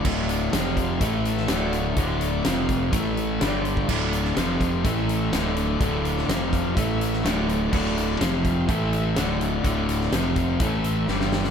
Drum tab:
CC |x---------------|----------------|x---------------|----------------|
HH |--x-x-x-x-x-x-x-|x-x-x-x-x-x-x-x-|--x-x-x-x-x-x-x-|x-x-x-x-x-x-x-x-|
SD |----o------oo---|----o-------o---|---oo-------o---|---oo------oo---|
BD |o-----o-o-------|o-----o-o------o|o-----o-o-------|o-----o-o-------|

CC |x---------------|----------------|
HH |--x-x-x-x-x-x-x-|x-x-x-x-x-x-----|
SD |----o-------o---|---oo-------oooo|
BD |o-----o-o-------|o-----o-o-------|